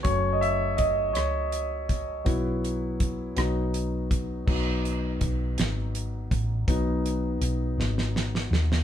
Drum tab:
CC |------------|------------|x-----------|------------|
HH |x-x-x-x-x-x-|x-x-x-x-x-x-|--x-x-x-x-x-|x-x-x-------|
SD |------r-----|------r-----|------o-----|------oooooo|
BD |o---o-----o-|o---o-----o-|o---o-----o-|o-----------|